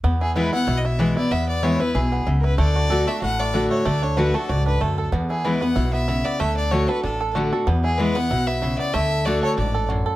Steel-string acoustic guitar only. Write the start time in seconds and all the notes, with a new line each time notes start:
0.04 E2
0.35 E3 G#3 B3 E4
0.53 B3 E4
0.67 B2
0.99 E3 G#3 B3 E4
1.16 B3 E4
1.31 E2
1.63 E3 G#3 B3 E4
1.79 B3 E4
1.94 B2
2.27 C#3
2.58 D3
2.90 D3 A3 D4 F#4
3.07 D4 F#4
3.22 A2
3.54 D3 A3 D4 F#4
3.85 D3
4.17 D3 A3 D4 F#4
4.34 D4 F#4
4.49 G#2
4.81 F#2
5.13 E2
5.45 E3 G#3 B3 E4
5.62 B3 E4
5.77 B2
6.08 C#3
6.40 D3
6.72 D3 A3 D4 F#4
6.89 D4 F#4
7.03 A2
7.35 D3 A3 D4 F#4
7.52 D4 F#4
7.68 E2
7.99 E3 G#3 B3 E4
8.16 B3 E4
8.31 B2
8.63 C#3
8.94 D3
9.26 D3 A3 D4 F#4
9.58 G#2
9.90 F#2